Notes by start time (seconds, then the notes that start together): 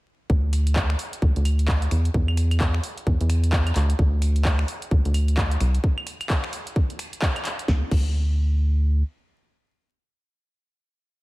0.30 D2, kick
0.53 finger snap, open hi-hat
0.67 closed hi-hat
0.76 kick, clap
0.90 finger snap
0.99 open hi-hat
1.13 closed hi-hat
1.22 D2, kick
1.36 D2, closed hi-hat
1.45 open hi-hat, claves
1.59 closed hi-hat
1.68 kick, clap
1.82 closed hi-hat
1.91 E2, finger snap, open hi-hat
2.05 closed hi-hat
2.14 E2, kick
2.28 claves
2.37 finger snap, open hi-hat
2.51 closed hi-hat, claves
2.60 kick, clap
2.74 finger snap
2.83 open hi-hat
2.98 closed hi-hat
3.07 E2, kick
3.21 E2, closed hi-hat
3.30 finger snap, open hi-hat
3.44 closed hi-hat
3.53 kick, clap
3.67 closed hi-hat, claves
3.76 D2, clap, open hi-hat
3.90 closed hi-hat
3.99 D2, kick
4.22 finger snap, open hi-hat
4.36 closed hi-hat
4.45 kick, clap
4.59 finger snap
4.68 open hi-hat
4.82 closed hi-hat
4.91 D2, kick
5.05 D2, closed hi-hat
5.14 open hi-hat, claves
5.28 closed hi-hat
5.37 kick, clap
5.51 closed hi-hat
5.61 C2, finger snap, open hi-hat
5.75 closed hi-hat
5.84 kick
5.98 claves
6.07 finger snap, open hi-hat
6.21 closed hi-hat, claves
6.30 kick, clap
6.44 finger snap
6.53 open hi-hat
6.67 closed hi-hat
6.76 kick
6.90 closed hi-hat
6.99 finger snap, open hi-hat
7.13 closed hi-hat
7.22 kick, clap
7.36 closed hi-hat, claves
7.45 clap, open hi-hat
7.59 closed hi-hat
7.68 D2, kick, snare
7.91 D2, kick, crash